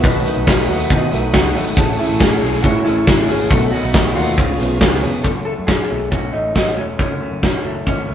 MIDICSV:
0, 0, Header, 1, 7, 480
1, 0, Start_track
1, 0, Tempo, 435414
1, 37, Time_signature, 4, 2, 24, 8
1, 8978, End_track
2, 0, Start_track
2, 0, Title_t, "String machine"
2, 0, Program_c, 0, 50
2, 0, Note_on_c, 0, 78, 70
2, 0, Note_on_c, 0, 83, 71
2, 30, Note_on_c, 0, 57, 83
2, 34, Note_on_c, 0, 87, 87
2, 1901, Note_off_c, 0, 78, 0
2, 1907, Note_off_c, 0, 83, 0
2, 1928, Note_off_c, 0, 87, 0
2, 1952, Note_on_c, 0, 85, 71
2, 1955, Note_on_c, 0, 80, 69
2, 1956, Note_on_c, 0, 88, 85
2, 3845, Note_off_c, 0, 85, 0
2, 3846, Note_off_c, 0, 80, 0
2, 3847, Note_off_c, 0, 88, 0
2, 3859, Note_on_c, 0, 78, 69
2, 3859, Note_on_c, 0, 83, 73
2, 3860, Note_on_c, 0, 87, 83
2, 4773, Note_off_c, 0, 57, 0
2, 4806, Note_on_c, 0, 85, 78
2, 4807, Note_on_c, 0, 77, 71
2, 4810, Note_off_c, 0, 78, 0
2, 4810, Note_off_c, 0, 87, 0
2, 4812, Note_on_c, 0, 68, 71
2, 5761, Note_off_c, 0, 83, 0
2, 5765, Note_off_c, 0, 77, 0
2, 5765, Note_off_c, 0, 85, 0
2, 5768, Note_off_c, 0, 68, 0
2, 8978, End_track
3, 0, Start_track
3, 0, Title_t, "Clean electric guitar"
3, 0, Program_c, 1, 27
3, 50, Note_on_c, 1, 71, 76
3, 1433, Note_off_c, 1, 71, 0
3, 2421, Note_on_c, 1, 68, 89
3, 2889, Note_off_c, 1, 68, 0
3, 2894, Note_on_c, 1, 66, 91
3, 3121, Note_off_c, 1, 66, 0
3, 3138, Note_on_c, 1, 64, 87
3, 3620, Note_on_c, 1, 68, 104
3, 3634, Note_off_c, 1, 64, 0
3, 3854, Note_off_c, 1, 68, 0
3, 3858, Note_on_c, 1, 69, 109
3, 4096, Note_off_c, 1, 69, 0
3, 4100, Note_on_c, 1, 66, 98
3, 4574, Note_off_c, 1, 66, 0
3, 4579, Note_on_c, 1, 65, 87
3, 5256, Note_off_c, 1, 65, 0
3, 5772, Note_on_c, 1, 69, 79
3, 5838, Note_off_c, 1, 69, 0
3, 6010, Note_on_c, 1, 69, 80
3, 6076, Note_off_c, 1, 69, 0
3, 6250, Note_on_c, 1, 68, 88
3, 6704, Note_off_c, 1, 68, 0
3, 6738, Note_on_c, 1, 66, 68
3, 6975, Note_on_c, 1, 63, 77
3, 6990, Note_off_c, 1, 66, 0
3, 7208, Note_off_c, 1, 63, 0
3, 7221, Note_on_c, 1, 63, 69
3, 7448, Note_off_c, 1, 63, 0
3, 7467, Note_on_c, 1, 61, 73
3, 7532, Note_off_c, 1, 61, 0
3, 7710, Note_on_c, 1, 61, 64
3, 8390, Note_off_c, 1, 61, 0
3, 8670, Note_on_c, 1, 61, 85
3, 8978, Note_off_c, 1, 61, 0
3, 8978, End_track
4, 0, Start_track
4, 0, Title_t, "Steel-string acoustic guitar"
4, 0, Program_c, 2, 25
4, 33, Note_on_c, 2, 51, 75
4, 34, Note_on_c, 2, 47, 79
4, 39, Note_on_c, 2, 54, 82
4, 46, Note_on_c, 2, 57, 72
4, 49, Note_on_c, 2, 63, 80
4, 52, Note_on_c, 2, 66, 94
4, 259, Note_off_c, 2, 66, 0
4, 270, Note_off_c, 2, 63, 0
4, 272, Note_on_c, 2, 66, 59
4, 274, Note_off_c, 2, 47, 0
4, 274, Note_off_c, 2, 51, 0
4, 277, Note_off_c, 2, 54, 0
4, 281, Note_off_c, 2, 57, 0
4, 283, Note_on_c, 2, 63, 52
4, 296, Note_on_c, 2, 57, 48
4, 305, Note_on_c, 2, 54, 46
4, 500, Note_off_c, 2, 54, 0
4, 511, Note_off_c, 2, 57, 0
4, 513, Note_off_c, 2, 66, 0
4, 514, Note_on_c, 2, 54, 58
4, 519, Note_off_c, 2, 63, 0
4, 524, Note_on_c, 2, 57, 62
4, 536, Note_on_c, 2, 63, 63
4, 547, Note_on_c, 2, 66, 60
4, 740, Note_off_c, 2, 66, 0
4, 746, Note_off_c, 2, 63, 0
4, 753, Note_off_c, 2, 54, 0
4, 753, Note_on_c, 2, 66, 66
4, 759, Note_off_c, 2, 57, 0
4, 760, Note_on_c, 2, 63, 60
4, 777, Note_on_c, 2, 57, 57
4, 782, Note_on_c, 2, 54, 47
4, 988, Note_off_c, 2, 54, 0
4, 988, Note_on_c, 2, 47, 84
4, 990, Note_off_c, 2, 57, 0
4, 993, Note_off_c, 2, 66, 0
4, 993, Note_on_c, 2, 51, 91
4, 996, Note_off_c, 2, 63, 0
4, 1002, Note_on_c, 2, 54, 86
4, 1003, Note_on_c, 2, 57, 86
4, 1007, Note_on_c, 2, 63, 95
4, 1009, Note_on_c, 2, 66, 96
4, 1208, Note_off_c, 2, 66, 0
4, 1220, Note_off_c, 2, 63, 0
4, 1221, Note_on_c, 2, 66, 60
4, 1230, Note_off_c, 2, 47, 0
4, 1231, Note_off_c, 2, 57, 0
4, 1232, Note_off_c, 2, 51, 0
4, 1233, Note_on_c, 2, 63, 60
4, 1236, Note_off_c, 2, 54, 0
4, 1244, Note_on_c, 2, 57, 58
4, 1253, Note_on_c, 2, 54, 53
4, 1447, Note_off_c, 2, 54, 0
4, 1460, Note_on_c, 2, 54, 60
4, 1464, Note_off_c, 2, 57, 0
4, 1466, Note_off_c, 2, 66, 0
4, 1472, Note_off_c, 2, 63, 0
4, 1478, Note_on_c, 2, 57, 63
4, 1484, Note_on_c, 2, 63, 67
4, 1490, Note_on_c, 2, 66, 74
4, 1683, Note_off_c, 2, 66, 0
4, 1694, Note_off_c, 2, 63, 0
4, 1696, Note_on_c, 2, 66, 59
4, 1705, Note_off_c, 2, 54, 0
4, 1706, Note_off_c, 2, 57, 0
4, 1708, Note_on_c, 2, 63, 64
4, 1719, Note_on_c, 2, 57, 58
4, 1727, Note_on_c, 2, 54, 60
4, 1929, Note_off_c, 2, 57, 0
4, 1938, Note_off_c, 2, 54, 0
4, 1942, Note_off_c, 2, 66, 0
4, 1942, Note_on_c, 2, 57, 88
4, 1948, Note_off_c, 2, 63, 0
4, 1955, Note_on_c, 2, 61, 94
4, 1959, Note_on_c, 2, 64, 88
4, 1963, Note_on_c, 2, 68, 85
4, 2159, Note_off_c, 2, 68, 0
4, 2173, Note_on_c, 2, 68, 64
4, 2175, Note_off_c, 2, 64, 0
4, 2185, Note_off_c, 2, 57, 0
4, 2188, Note_on_c, 2, 64, 58
4, 2191, Note_off_c, 2, 61, 0
4, 2205, Note_on_c, 2, 61, 55
4, 2410, Note_off_c, 2, 61, 0
4, 2410, Note_on_c, 2, 57, 60
4, 2419, Note_off_c, 2, 64, 0
4, 2419, Note_off_c, 2, 68, 0
4, 2423, Note_on_c, 2, 61, 57
4, 2445, Note_on_c, 2, 68, 62
4, 2640, Note_off_c, 2, 68, 0
4, 2653, Note_on_c, 2, 68, 56
4, 2658, Note_off_c, 2, 57, 0
4, 2664, Note_off_c, 2, 61, 0
4, 2672, Note_on_c, 2, 64, 51
4, 2683, Note_on_c, 2, 61, 41
4, 2893, Note_off_c, 2, 61, 0
4, 2896, Note_off_c, 2, 64, 0
4, 2897, Note_on_c, 2, 57, 76
4, 2899, Note_off_c, 2, 68, 0
4, 2907, Note_on_c, 2, 61, 81
4, 2910, Note_on_c, 2, 64, 76
4, 2921, Note_on_c, 2, 68, 87
4, 3113, Note_off_c, 2, 68, 0
4, 3126, Note_on_c, 2, 68, 55
4, 3130, Note_off_c, 2, 64, 0
4, 3140, Note_off_c, 2, 57, 0
4, 3143, Note_on_c, 2, 64, 52
4, 3145, Note_off_c, 2, 61, 0
4, 3164, Note_on_c, 2, 61, 48
4, 3370, Note_on_c, 2, 57, 54
4, 3371, Note_off_c, 2, 61, 0
4, 3374, Note_off_c, 2, 68, 0
4, 3383, Note_off_c, 2, 64, 0
4, 3384, Note_on_c, 2, 61, 58
4, 3395, Note_on_c, 2, 64, 61
4, 3401, Note_on_c, 2, 68, 62
4, 3601, Note_off_c, 2, 68, 0
4, 3614, Note_on_c, 2, 68, 51
4, 3616, Note_off_c, 2, 57, 0
4, 3618, Note_off_c, 2, 64, 0
4, 3623, Note_off_c, 2, 61, 0
4, 3631, Note_on_c, 2, 64, 54
4, 3650, Note_on_c, 2, 61, 51
4, 3858, Note_off_c, 2, 68, 0
4, 3862, Note_on_c, 2, 47, 75
4, 3866, Note_off_c, 2, 64, 0
4, 3868, Note_off_c, 2, 61, 0
4, 3868, Note_on_c, 2, 54, 80
4, 3873, Note_on_c, 2, 57, 87
4, 3876, Note_on_c, 2, 63, 82
4, 3881, Note_on_c, 2, 66, 72
4, 4083, Note_off_c, 2, 66, 0
4, 4096, Note_on_c, 2, 66, 63
4, 4102, Note_off_c, 2, 47, 0
4, 4102, Note_off_c, 2, 63, 0
4, 4104, Note_off_c, 2, 54, 0
4, 4107, Note_off_c, 2, 57, 0
4, 4116, Note_on_c, 2, 63, 50
4, 4127, Note_on_c, 2, 57, 44
4, 4331, Note_on_c, 2, 54, 57
4, 4332, Note_off_c, 2, 57, 0
4, 4338, Note_off_c, 2, 63, 0
4, 4339, Note_off_c, 2, 66, 0
4, 4345, Note_on_c, 2, 57, 61
4, 4351, Note_on_c, 2, 63, 59
4, 4361, Note_on_c, 2, 66, 65
4, 4555, Note_off_c, 2, 66, 0
4, 4568, Note_on_c, 2, 66, 59
4, 4572, Note_off_c, 2, 63, 0
4, 4576, Note_off_c, 2, 54, 0
4, 4583, Note_off_c, 2, 57, 0
4, 4585, Note_on_c, 2, 63, 52
4, 4600, Note_on_c, 2, 57, 41
4, 4802, Note_on_c, 2, 49, 76
4, 4809, Note_on_c, 2, 53, 73
4, 4812, Note_off_c, 2, 57, 0
4, 4815, Note_off_c, 2, 66, 0
4, 4816, Note_on_c, 2, 59, 82
4, 4818, Note_off_c, 2, 63, 0
4, 4822, Note_on_c, 2, 61, 88
4, 4827, Note_on_c, 2, 68, 78
4, 5026, Note_off_c, 2, 68, 0
4, 5039, Note_on_c, 2, 68, 60
4, 5042, Note_off_c, 2, 61, 0
4, 5051, Note_off_c, 2, 49, 0
4, 5055, Note_off_c, 2, 53, 0
4, 5056, Note_on_c, 2, 61, 52
4, 5059, Note_off_c, 2, 59, 0
4, 5071, Note_on_c, 2, 59, 53
4, 5279, Note_off_c, 2, 59, 0
4, 5279, Note_on_c, 2, 53, 71
4, 5289, Note_off_c, 2, 61, 0
4, 5290, Note_off_c, 2, 68, 0
4, 5292, Note_on_c, 2, 59, 65
4, 5303, Note_on_c, 2, 61, 69
4, 5313, Note_on_c, 2, 68, 77
4, 5514, Note_off_c, 2, 68, 0
4, 5527, Note_on_c, 2, 68, 66
4, 5530, Note_off_c, 2, 53, 0
4, 5531, Note_off_c, 2, 61, 0
4, 5537, Note_off_c, 2, 59, 0
4, 5544, Note_on_c, 2, 61, 56
4, 5558, Note_on_c, 2, 59, 49
4, 5775, Note_off_c, 2, 68, 0
4, 5783, Note_off_c, 2, 61, 0
4, 5790, Note_off_c, 2, 59, 0
4, 8978, End_track
5, 0, Start_track
5, 0, Title_t, "Clean electric guitar"
5, 0, Program_c, 3, 27
5, 4107, Note_on_c, 3, 61, 56
5, 4227, Note_off_c, 3, 61, 0
5, 4227, Note_on_c, 3, 63, 52
5, 4872, Note_off_c, 3, 63, 0
5, 5781, Note_on_c, 3, 42, 63
5, 6025, Note_on_c, 3, 57, 49
5, 6264, Note_on_c, 3, 61, 50
5, 6492, Note_off_c, 3, 57, 0
5, 6505, Note_on_c, 3, 57, 53
5, 6730, Note_off_c, 3, 61, 0
5, 6743, Note_on_c, 3, 61, 54
5, 6969, Note_off_c, 3, 57, 0
5, 6982, Note_on_c, 3, 57, 52
5, 7206, Note_off_c, 3, 61, 0
5, 7219, Note_on_c, 3, 61, 45
5, 7447, Note_off_c, 3, 57, 0
5, 7461, Note_on_c, 3, 57, 50
5, 7689, Note_off_c, 3, 42, 0
5, 7702, Note_on_c, 3, 42, 66
5, 7930, Note_off_c, 3, 57, 0
5, 7943, Note_on_c, 3, 57, 46
5, 8173, Note_off_c, 3, 61, 0
5, 8186, Note_on_c, 3, 61, 49
5, 8415, Note_off_c, 3, 57, 0
5, 8429, Note_on_c, 3, 57, 57
5, 8654, Note_off_c, 3, 61, 0
5, 8667, Note_on_c, 3, 61, 56
5, 8901, Note_off_c, 3, 57, 0
5, 8914, Note_on_c, 3, 57, 52
5, 8978, Note_off_c, 3, 42, 0
5, 8978, Note_off_c, 3, 57, 0
5, 8978, Note_off_c, 3, 61, 0
5, 8978, End_track
6, 0, Start_track
6, 0, Title_t, "Picked electric bass"
6, 0, Program_c, 4, 34
6, 42, Note_on_c, 4, 35, 102
6, 243, Note_off_c, 4, 35, 0
6, 408, Note_on_c, 4, 35, 104
6, 707, Note_off_c, 4, 35, 0
6, 756, Note_on_c, 4, 39, 89
6, 958, Note_off_c, 4, 39, 0
6, 999, Note_on_c, 4, 47, 101
6, 1200, Note_off_c, 4, 47, 0
6, 1237, Note_on_c, 4, 35, 85
6, 1479, Note_off_c, 4, 35, 0
6, 1479, Note_on_c, 4, 37, 86
6, 1717, Note_off_c, 4, 37, 0
6, 1717, Note_on_c, 4, 32, 83
6, 1917, Note_off_c, 4, 32, 0
6, 1955, Note_on_c, 4, 33, 105
6, 2156, Note_off_c, 4, 33, 0
6, 2304, Note_on_c, 4, 33, 102
6, 2610, Note_off_c, 4, 33, 0
6, 2669, Note_on_c, 4, 35, 93
6, 2871, Note_off_c, 4, 35, 0
6, 2908, Note_on_c, 4, 45, 103
6, 3110, Note_off_c, 4, 45, 0
6, 3150, Note_on_c, 4, 33, 82
6, 3351, Note_off_c, 4, 33, 0
6, 3389, Note_on_c, 4, 33, 89
6, 3590, Note_off_c, 4, 33, 0
6, 3625, Note_on_c, 4, 32, 90
6, 3827, Note_off_c, 4, 32, 0
6, 3868, Note_on_c, 4, 35, 105
6, 4069, Note_off_c, 4, 35, 0
6, 4228, Note_on_c, 4, 35, 95
6, 4531, Note_off_c, 4, 35, 0
6, 4587, Note_on_c, 4, 39, 81
6, 4831, Note_off_c, 4, 39, 0
6, 4831, Note_on_c, 4, 37, 101
6, 5031, Note_off_c, 4, 37, 0
6, 5073, Note_on_c, 4, 35, 82
6, 5272, Note_off_c, 4, 35, 0
6, 5302, Note_on_c, 4, 37, 91
6, 5506, Note_off_c, 4, 37, 0
6, 5546, Note_on_c, 4, 29, 94
6, 5748, Note_off_c, 4, 29, 0
6, 5784, Note_on_c, 4, 30, 78
6, 6090, Note_off_c, 4, 30, 0
6, 6156, Note_on_c, 4, 42, 73
6, 6252, Note_off_c, 4, 42, 0
6, 6263, Note_on_c, 4, 42, 80
6, 6468, Note_off_c, 4, 42, 0
6, 6513, Note_on_c, 4, 35, 74
6, 6919, Note_off_c, 4, 35, 0
6, 6992, Note_on_c, 4, 33, 72
6, 7194, Note_off_c, 4, 33, 0
6, 7232, Note_on_c, 4, 32, 76
6, 7467, Note_off_c, 4, 32, 0
6, 7467, Note_on_c, 4, 28, 80
6, 7673, Note_off_c, 4, 28, 0
6, 7713, Note_on_c, 4, 30, 84
6, 7917, Note_off_c, 4, 30, 0
6, 8067, Note_on_c, 4, 30, 72
6, 8274, Note_off_c, 4, 30, 0
6, 8425, Note_on_c, 4, 30, 79
6, 8634, Note_off_c, 4, 30, 0
6, 8673, Note_on_c, 4, 32, 75
6, 8879, Note_off_c, 4, 32, 0
6, 8919, Note_on_c, 4, 37, 80
6, 8978, Note_off_c, 4, 37, 0
6, 8978, End_track
7, 0, Start_track
7, 0, Title_t, "Drums"
7, 37, Note_on_c, 9, 44, 68
7, 38, Note_on_c, 9, 46, 82
7, 41, Note_on_c, 9, 36, 117
7, 52, Note_on_c, 9, 54, 53
7, 147, Note_off_c, 9, 44, 0
7, 148, Note_off_c, 9, 46, 0
7, 151, Note_off_c, 9, 36, 0
7, 163, Note_off_c, 9, 54, 0
7, 282, Note_on_c, 9, 44, 59
7, 282, Note_on_c, 9, 46, 72
7, 291, Note_on_c, 9, 54, 57
7, 392, Note_off_c, 9, 44, 0
7, 392, Note_off_c, 9, 46, 0
7, 401, Note_off_c, 9, 54, 0
7, 521, Note_on_c, 9, 36, 122
7, 521, Note_on_c, 9, 44, 73
7, 522, Note_on_c, 9, 54, 100
7, 527, Note_on_c, 9, 46, 73
7, 528, Note_on_c, 9, 38, 125
7, 631, Note_off_c, 9, 36, 0
7, 631, Note_off_c, 9, 44, 0
7, 632, Note_off_c, 9, 54, 0
7, 637, Note_off_c, 9, 46, 0
7, 638, Note_off_c, 9, 38, 0
7, 757, Note_on_c, 9, 54, 53
7, 760, Note_on_c, 9, 44, 64
7, 760, Note_on_c, 9, 46, 75
7, 868, Note_off_c, 9, 54, 0
7, 870, Note_off_c, 9, 44, 0
7, 870, Note_off_c, 9, 46, 0
7, 989, Note_on_c, 9, 46, 74
7, 992, Note_on_c, 9, 44, 62
7, 996, Note_on_c, 9, 36, 97
7, 1003, Note_on_c, 9, 54, 35
7, 1099, Note_off_c, 9, 46, 0
7, 1103, Note_off_c, 9, 44, 0
7, 1107, Note_off_c, 9, 36, 0
7, 1114, Note_off_c, 9, 54, 0
7, 1230, Note_on_c, 9, 46, 82
7, 1233, Note_on_c, 9, 44, 69
7, 1237, Note_on_c, 9, 54, 29
7, 1340, Note_off_c, 9, 46, 0
7, 1343, Note_off_c, 9, 44, 0
7, 1347, Note_off_c, 9, 54, 0
7, 1471, Note_on_c, 9, 44, 63
7, 1472, Note_on_c, 9, 46, 78
7, 1473, Note_on_c, 9, 38, 109
7, 1474, Note_on_c, 9, 54, 99
7, 1476, Note_on_c, 9, 36, 100
7, 1581, Note_off_c, 9, 44, 0
7, 1582, Note_off_c, 9, 46, 0
7, 1583, Note_off_c, 9, 38, 0
7, 1585, Note_off_c, 9, 54, 0
7, 1586, Note_off_c, 9, 36, 0
7, 1710, Note_on_c, 9, 44, 59
7, 1713, Note_on_c, 9, 46, 75
7, 1717, Note_on_c, 9, 54, 51
7, 1821, Note_off_c, 9, 44, 0
7, 1823, Note_off_c, 9, 46, 0
7, 1828, Note_off_c, 9, 54, 0
7, 1947, Note_on_c, 9, 44, 66
7, 1947, Note_on_c, 9, 46, 83
7, 1950, Note_on_c, 9, 36, 114
7, 1961, Note_on_c, 9, 54, 52
7, 2057, Note_off_c, 9, 44, 0
7, 2058, Note_off_c, 9, 46, 0
7, 2061, Note_off_c, 9, 36, 0
7, 2071, Note_off_c, 9, 54, 0
7, 2187, Note_on_c, 9, 44, 65
7, 2187, Note_on_c, 9, 46, 76
7, 2194, Note_on_c, 9, 54, 58
7, 2297, Note_off_c, 9, 44, 0
7, 2297, Note_off_c, 9, 46, 0
7, 2304, Note_off_c, 9, 54, 0
7, 2423, Note_on_c, 9, 54, 99
7, 2429, Note_on_c, 9, 44, 72
7, 2430, Note_on_c, 9, 36, 117
7, 2436, Note_on_c, 9, 38, 122
7, 2436, Note_on_c, 9, 46, 69
7, 2533, Note_off_c, 9, 54, 0
7, 2539, Note_off_c, 9, 44, 0
7, 2541, Note_off_c, 9, 36, 0
7, 2546, Note_off_c, 9, 38, 0
7, 2546, Note_off_c, 9, 46, 0
7, 2672, Note_on_c, 9, 44, 62
7, 2672, Note_on_c, 9, 46, 73
7, 2675, Note_on_c, 9, 54, 55
7, 2782, Note_off_c, 9, 44, 0
7, 2782, Note_off_c, 9, 46, 0
7, 2785, Note_off_c, 9, 54, 0
7, 2904, Note_on_c, 9, 46, 74
7, 2908, Note_on_c, 9, 44, 64
7, 2909, Note_on_c, 9, 36, 100
7, 3014, Note_off_c, 9, 46, 0
7, 3018, Note_off_c, 9, 44, 0
7, 3019, Note_off_c, 9, 36, 0
7, 3144, Note_on_c, 9, 46, 84
7, 3147, Note_on_c, 9, 44, 66
7, 3152, Note_on_c, 9, 54, 30
7, 3255, Note_off_c, 9, 46, 0
7, 3257, Note_off_c, 9, 44, 0
7, 3262, Note_off_c, 9, 54, 0
7, 3388, Note_on_c, 9, 36, 105
7, 3388, Note_on_c, 9, 44, 59
7, 3389, Note_on_c, 9, 46, 70
7, 3389, Note_on_c, 9, 54, 103
7, 3390, Note_on_c, 9, 38, 107
7, 3498, Note_off_c, 9, 44, 0
7, 3499, Note_off_c, 9, 36, 0
7, 3499, Note_off_c, 9, 54, 0
7, 3500, Note_off_c, 9, 38, 0
7, 3500, Note_off_c, 9, 46, 0
7, 3625, Note_on_c, 9, 54, 51
7, 3627, Note_on_c, 9, 44, 63
7, 3629, Note_on_c, 9, 46, 69
7, 3735, Note_off_c, 9, 54, 0
7, 3737, Note_off_c, 9, 44, 0
7, 3740, Note_off_c, 9, 46, 0
7, 3865, Note_on_c, 9, 36, 118
7, 3865, Note_on_c, 9, 44, 67
7, 3865, Note_on_c, 9, 46, 78
7, 3870, Note_on_c, 9, 54, 52
7, 3975, Note_off_c, 9, 44, 0
7, 3975, Note_off_c, 9, 46, 0
7, 3976, Note_off_c, 9, 36, 0
7, 3980, Note_off_c, 9, 54, 0
7, 4102, Note_on_c, 9, 44, 65
7, 4102, Note_on_c, 9, 46, 77
7, 4107, Note_on_c, 9, 54, 52
7, 4213, Note_off_c, 9, 44, 0
7, 4213, Note_off_c, 9, 46, 0
7, 4217, Note_off_c, 9, 54, 0
7, 4341, Note_on_c, 9, 44, 69
7, 4342, Note_on_c, 9, 54, 97
7, 4345, Note_on_c, 9, 36, 121
7, 4348, Note_on_c, 9, 38, 115
7, 4348, Note_on_c, 9, 46, 66
7, 4451, Note_off_c, 9, 44, 0
7, 4452, Note_off_c, 9, 54, 0
7, 4455, Note_off_c, 9, 36, 0
7, 4458, Note_off_c, 9, 38, 0
7, 4458, Note_off_c, 9, 46, 0
7, 4585, Note_on_c, 9, 54, 54
7, 4587, Note_on_c, 9, 44, 69
7, 4587, Note_on_c, 9, 46, 77
7, 4695, Note_off_c, 9, 54, 0
7, 4698, Note_off_c, 9, 44, 0
7, 4698, Note_off_c, 9, 46, 0
7, 4825, Note_on_c, 9, 46, 68
7, 4826, Note_on_c, 9, 36, 102
7, 4829, Note_on_c, 9, 44, 61
7, 4936, Note_off_c, 9, 46, 0
7, 4937, Note_off_c, 9, 36, 0
7, 4939, Note_off_c, 9, 44, 0
7, 5066, Note_on_c, 9, 46, 82
7, 5066, Note_on_c, 9, 54, 30
7, 5068, Note_on_c, 9, 44, 72
7, 5176, Note_off_c, 9, 46, 0
7, 5177, Note_off_c, 9, 54, 0
7, 5178, Note_off_c, 9, 44, 0
7, 5299, Note_on_c, 9, 44, 62
7, 5301, Note_on_c, 9, 38, 110
7, 5301, Note_on_c, 9, 46, 70
7, 5304, Note_on_c, 9, 36, 101
7, 5310, Note_on_c, 9, 54, 97
7, 5409, Note_off_c, 9, 44, 0
7, 5411, Note_off_c, 9, 46, 0
7, 5412, Note_off_c, 9, 38, 0
7, 5414, Note_off_c, 9, 36, 0
7, 5421, Note_off_c, 9, 54, 0
7, 5541, Note_on_c, 9, 44, 60
7, 5543, Note_on_c, 9, 46, 73
7, 5553, Note_on_c, 9, 54, 48
7, 5651, Note_off_c, 9, 44, 0
7, 5653, Note_off_c, 9, 46, 0
7, 5663, Note_off_c, 9, 54, 0
7, 5781, Note_on_c, 9, 42, 61
7, 5782, Note_on_c, 9, 36, 92
7, 5891, Note_off_c, 9, 42, 0
7, 5892, Note_off_c, 9, 36, 0
7, 6263, Note_on_c, 9, 36, 103
7, 6267, Note_on_c, 9, 38, 99
7, 6267, Note_on_c, 9, 42, 55
7, 6373, Note_off_c, 9, 36, 0
7, 6377, Note_off_c, 9, 42, 0
7, 6378, Note_off_c, 9, 38, 0
7, 6740, Note_on_c, 9, 42, 57
7, 6746, Note_on_c, 9, 36, 84
7, 6851, Note_off_c, 9, 42, 0
7, 6856, Note_off_c, 9, 36, 0
7, 7228, Note_on_c, 9, 38, 88
7, 7228, Note_on_c, 9, 42, 61
7, 7229, Note_on_c, 9, 36, 84
7, 7338, Note_off_c, 9, 38, 0
7, 7338, Note_off_c, 9, 42, 0
7, 7339, Note_off_c, 9, 36, 0
7, 7708, Note_on_c, 9, 36, 91
7, 7711, Note_on_c, 9, 42, 67
7, 7818, Note_off_c, 9, 36, 0
7, 7821, Note_off_c, 9, 42, 0
7, 8192, Note_on_c, 9, 36, 96
7, 8196, Note_on_c, 9, 42, 56
7, 8197, Note_on_c, 9, 38, 95
7, 8302, Note_off_c, 9, 36, 0
7, 8307, Note_off_c, 9, 38, 0
7, 8307, Note_off_c, 9, 42, 0
7, 8668, Note_on_c, 9, 42, 60
7, 8674, Note_on_c, 9, 36, 86
7, 8778, Note_off_c, 9, 42, 0
7, 8784, Note_off_c, 9, 36, 0
7, 8978, End_track
0, 0, End_of_file